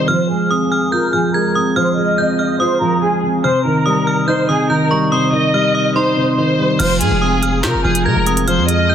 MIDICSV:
0, 0, Header, 1, 6, 480
1, 0, Start_track
1, 0, Tempo, 419580
1, 96, Time_signature, 4, 2, 24, 8
1, 10238, End_track
2, 0, Start_track
2, 0, Title_t, "Synth bell"
2, 0, Program_c, 0, 98
2, 90, Note_on_c, 0, 89, 107
2, 545, Note_off_c, 0, 89, 0
2, 578, Note_on_c, 0, 87, 82
2, 805, Note_off_c, 0, 87, 0
2, 819, Note_on_c, 0, 89, 84
2, 1046, Note_off_c, 0, 89, 0
2, 1055, Note_on_c, 0, 91, 85
2, 1284, Note_off_c, 0, 91, 0
2, 1292, Note_on_c, 0, 89, 75
2, 1522, Note_off_c, 0, 89, 0
2, 1537, Note_on_c, 0, 92, 91
2, 1765, Note_off_c, 0, 92, 0
2, 1778, Note_on_c, 0, 87, 76
2, 2005, Note_off_c, 0, 87, 0
2, 2016, Note_on_c, 0, 89, 106
2, 2467, Note_off_c, 0, 89, 0
2, 2495, Note_on_c, 0, 91, 78
2, 2724, Note_off_c, 0, 91, 0
2, 2734, Note_on_c, 0, 89, 74
2, 2963, Note_off_c, 0, 89, 0
2, 2973, Note_on_c, 0, 87, 83
2, 3889, Note_off_c, 0, 87, 0
2, 3936, Note_on_c, 0, 89, 91
2, 4388, Note_off_c, 0, 89, 0
2, 4411, Note_on_c, 0, 87, 83
2, 4642, Note_off_c, 0, 87, 0
2, 4657, Note_on_c, 0, 89, 81
2, 4885, Note_off_c, 0, 89, 0
2, 4893, Note_on_c, 0, 91, 83
2, 5123, Note_off_c, 0, 91, 0
2, 5134, Note_on_c, 0, 87, 83
2, 5363, Note_off_c, 0, 87, 0
2, 5376, Note_on_c, 0, 91, 77
2, 5604, Note_off_c, 0, 91, 0
2, 5615, Note_on_c, 0, 85, 81
2, 5844, Note_off_c, 0, 85, 0
2, 5857, Note_on_c, 0, 87, 98
2, 6308, Note_off_c, 0, 87, 0
2, 6338, Note_on_c, 0, 89, 83
2, 6566, Note_off_c, 0, 89, 0
2, 6575, Note_on_c, 0, 87, 74
2, 6804, Note_off_c, 0, 87, 0
2, 6816, Note_on_c, 0, 84, 90
2, 7267, Note_off_c, 0, 84, 0
2, 7769, Note_on_c, 0, 89, 118
2, 8223, Note_off_c, 0, 89, 0
2, 8256, Note_on_c, 0, 87, 83
2, 8484, Note_off_c, 0, 87, 0
2, 8498, Note_on_c, 0, 89, 88
2, 8725, Note_off_c, 0, 89, 0
2, 8734, Note_on_c, 0, 91, 94
2, 8963, Note_off_c, 0, 91, 0
2, 8974, Note_on_c, 0, 89, 81
2, 9203, Note_off_c, 0, 89, 0
2, 9217, Note_on_c, 0, 92, 99
2, 9445, Note_off_c, 0, 92, 0
2, 9459, Note_on_c, 0, 87, 80
2, 9686, Note_off_c, 0, 87, 0
2, 9696, Note_on_c, 0, 89, 113
2, 10148, Note_off_c, 0, 89, 0
2, 10175, Note_on_c, 0, 91, 86
2, 10238, Note_off_c, 0, 91, 0
2, 10238, End_track
3, 0, Start_track
3, 0, Title_t, "Violin section"
3, 0, Program_c, 1, 48
3, 97, Note_on_c, 1, 72, 110
3, 322, Note_off_c, 1, 72, 0
3, 338, Note_on_c, 1, 68, 79
3, 1014, Note_off_c, 1, 68, 0
3, 1059, Note_on_c, 1, 70, 78
3, 1283, Note_off_c, 1, 70, 0
3, 1297, Note_on_c, 1, 68, 81
3, 1522, Note_off_c, 1, 68, 0
3, 1537, Note_on_c, 1, 70, 81
3, 1762, Note_off_c, 1, 70, 0
3, 2019, Note_on_c, 1, 72, 84
3, 2243, Note_off_c, 1, 72, 0
3, 2255, Note_on_c, 1, 75, 83
3, 2933, Note_off_c, 1, 75, 0
3, 2976, Note_on_c, 1, 72, 86
3, 3202, Note_off_c, 1, 72, 0
3, 3215, Note_on_c, 1, 70, 84
3, 3441, Note_off_c, 1, 70, 0
3, 3453, Note_on_c, 1, 68, 87
3, 3680, Note_off_c, 1, 68, 0
3, 3937, Note_on_c, 1, 72, 103
3, 4162, Note_off_c, 1, 72, 0
3, 4176, Note_on_c, 1, 70, 83
3, 4853, Note_off_c, 1, 70, 0
3, 4895, Note_on_c, 1, 72, 73
3, 5121, Note_off_c, 1, 72, 0
3, 5140, Note_on_c, 1, 68, 83
3, 5364, Note_off_c, 1, 68, 0
3, 5378, Note_on_c, 1, 70, 82
3, 5603, Note_off_c, 1, 70, 0
3, 5856, Note_on_c, 1, 72, 91
3, 6082, Note_off_c, 1, 72, 0
3, 6100, Note_on_c, 1, 75, 87
3, 6775, Note_off_c, 1, 75, 0
3, 6818, Note_on_c, 1, 72, 78
3, 7268, Note_off_c, 1, 72, 0
3, 7294, Note_on_c, 1, 72, 80
3, 7747, Note_off_c, 1, 72, 0
3, 7777, Note_on_c, 1, 72, 121
3, 8002, Note_off_c, 1, 72, 0
3, 8019, Note_on_c, 1, 68, 86
3, 8694, Note_off_c, 1, 68, 0
3, 8738, Note_on_c, 1, 70, 87
3, 8963, Note_off_c, 1, 70, 0
3, 8977, Note_on_c, 1, 68, 88
3, 9202, Note_off_c, 1, 68, 0
3, 9218, Note_on_c, 1, 70, 89
3, 9443, Note_off_c, 1, 70, 0
3, 9700, Note_on_c, 1, 72, 89
3, 9924, Note_off_c, 1, 72, 0
3, 9936, Note_on_c, 1, 75, 90
3, 10238, Note_off_c, 1, 75, 0
3, 10238, End_track
4, 0, Start_track
4, 0, Title_t, "Felt piano"
4, 0, Program_c, 2, 0
4, 0, Control_c, 2, 64, 127
4, 0, Note_on_c, 2, 48, 81
4, 0, Note_on_c, 2, 51, 91
4, 0, Note_on_c, 2, 55, 79
4, 0, Note_on_c, 2, 63, 104
4, 98, Note_on_c, 2, 53, 90
4, 111, Control_c, 2, 64, 0
4, 119, Note_off_c, 2, 48, 0
4, 119, Note_off_c, 2, 55, 0
4, 119, Note_off_c, 2, 63, 0
4, 120, Note_off_c, 2, 51, 0
4, 330, Control_c, 2, 64, 127
4, 337, Note_on_c, 2, 56, 77
4, 574, Note_on_c, 2, 60, 86
4, 1057, Note_on_c, 2, 65, 92
4, 1279, Note_off_c, 2, 53, 0
4, 1297, Note_on_c, 2, 53, 76
4, 1520, Note_off_c, 2, 56, 0
4, 1538, Note_on_c, 2, 56, 84
4, 1760, Note_off_c, 2, 60, 0
4, 1777, Note_on_c, 2, 60, 77
4, 2000, Note_off_c, 2, 53, 0
4, 2018, Note_on_c, 2, 53, 94
4, 2240, Note_off_c, 2, 56, 0
4, 2257, Note_off_c, 2, 65, 0
4, 2257, Note_on_c, 2, 56, 79
4, 2480, Note_off_c, 2, 60, 0
4, 2497, Note_on_c, 2, 60, 86
4, 2976, Note_on_c, 2, 65, 99
4, 3199, Note_off_c, 2, 53, 0
4, 3216, Note_on_c, 2, 53, 80
4, 3441, Note_off_c, 2, 56, 0
4, 3458, Note_on_c, 2, 56, 80
4, 3680, Note_off_c, 2, 60, 0
4, 3698, Note_on_c, 2, 60, 79
4, 3934, Note_on_c, 2, 48, 90
4, 3936, Note_off_c, 2, 53, 0
4, 3936, Note_off_c, 2, 65, 0
4, 3937, Note_off_c, 2, 56, 0
4, 3937, Note_off_c, 2, 60, 0
4, 3950, Control_c, 2, 64, 0
4, 4175, Note_on_c, 2, 51, 82
4, 4177, Control_c, 2, 64, 127
4, 4417, Note_on_c, 2, 55, 86
4, 4894, Note_on_c, 2, 63, 99
4, 5120, Note_off_c, 2, 48, 0
4, 5137, Note_on_c, 2, 48, 78
4, 5359, Note_off_c, 2, 51, 0
4, 5377, Note_on_c, 2, 51, 90
4, 5600, Note_off_c, 2, 55, 0
4, 5617, Note_on_c, 2, 55, 75
4, 5839, Note_off_c, 2, 48, 0
4, 5856, Note_on_c, 2, 48, 88
4, 6078, Note_off_c, 2, 51, 0
4, 6095, Note_off_c, 2, 63, 0
4, 6095, Note_on_c, 2, 51, 76
4, 6318, Note_off_c, 2, 55, 0
4, 6335, Note_on_c, 2, 55, 86
4, 6815, Note_on_c, 2, 63, 97
4, 7039, Note_off_c, 2, 48, 0
4, 7056, Note_on_c, 2, 48, 78
4, 7278, Note_off_c, 2, 51, 0
4, 7295, Note_on_c, 2, 51, 85
4, 7517, Note_off_c, 2, 55, 0
4, 7534, Note_on_c, 2, 55, 73
4, 7775, Note_off_c, 2, 55, 0
4, 7776, Note_off_c, 2, 48, 0
4, 7776, Note_off_c, 2, 51, 0
4, 7776, Note_off_c, 2, 63, 0
4, 7778, Note_on_c, 2, 53, 99
4, 7793, Control_c, 2, 64, 0
4, 7971, Control_c, 2, 64, 127
4, 8018, Note_on_c, 2, 56, 83
4, 8254, Note_on_c, 2, 60, 92
4, 8736, Note_on_c, 2, 65, 95
4, 8959, Note_off_c, 2, 53, 0
4, 8976, Note_on_c, 2, 53, 81
4, 9201, Note_off_c, 2, 56, 0
4, 9218, Note_on_c, 2, 56, 88
4, 9439, Note_off_c, 2, 60, 0
4, 9456, Note_on_c, 2, 60, 85
4, 9680, Note_off_c, 2, 53, 0
4, 9698, Note_on_c, 2, 53, 100
4, 9921, Note_off_c, 2, 56, 0
4, 9936, Note_off_c, 2, 65, 0
4, 9938, Note_on_c, 2, 56, 85
4, 10160, Note_off_c, 2, 60, 0
4, 10177, Note_on_c, 2, 60, 93
4, 10238, Note_off_c, 2, 53, 0
4, 10238, Note_off_c, 2, 56, 0
4, 10238, Note_off_c, 2, 60, 0
4, 10238, End_track
5, 0, Start_track
5, 0, Title_t, "808-style bass"
5, 0, Program_c, 3, 38
5, 7776, Note_on_c, 3, 29, 112
5, 8016, Note_on_c, 3, 44, 99
5, 8033, Note_off_c, 3, 29, 0
5, 8130, Note_off_c, 3, 44, 0
5, 8136, Note_on_c, 3, 29, 106
5, 8737, Note_on_c, 3, 48, 100
5, 8754, Note_off_c, 3, 29, 0
5, 8857, Note_on_c, 3, 29, 102
5, 8874, Note_off_c, 3, 48, 0
5, 8970, Note_off_c, 3, 29, 0
5, 8976, Note_on_c, 3, 29, 104
5, 9216, Note_on_c, 3, 48, 102
5, 9233, Note_off_c, 3, 29, 0
5, 9330, Note_off_c, 3, 48, 0
5, 9336, Note_on_c, 3, 29, 108
5, 9816, Note_on_c, 3, 41, 101
5, 9833, Note_off_c, 3, 29, 0
5, 10238, Note_off_c, 3, 41, 0
5, 10238, End_track
6, 0, Start_track
6, 0, Title_t, "Drums"
6, 7776, Note_on_c, 9, 42, 92
6, 7776, Note_on_c, 9, 49, 103
6, 7890, Note_off_c, 9, 42, 0
6, 7890, Note_off_c, 9, 49, 0
6, 8016, Note_on_c, 9, 42, 72
6, 8130, Note_off_c, 9, 42, 0
6, 8495, Note_on_c, 9, 42, 70
6, 8609, Note_off_c, 9, 42, 0
6, 8734, Note_on_c, 9, 42, 86
6, 8735, Note_on_c, 9, 38, 112
6, 8742, Note_on_c, 9, 39, 92
6, 8849, Note_off_c, 9, 38, 0
6, 8849, Note_off_c, 9, 42, 0
6, 8857, Note_off_c, 9, 39, 0
6, 9095, Note_on_c, 9, 42, 91
6, 9210, Note_off_c, 9, 42, 0
6, 9455, Note_on_c, 9, 42, 71
6, 9569, Note_off_c, 9, 42, 0
6, 9576, Note_on_c, 9, 42, 84
6, 9691, Note_off_c, 9, 42, 0
6, 9696, Note_on_c, 9, 42, 95
6, 9811, Note_off_c, 9, 42, 0
6, 9936, Note_on_c, 9, 42, 76
6, 10050, Note_off_c, 9, 42, 0
6, 10238, End_track
0, 0, End_of_file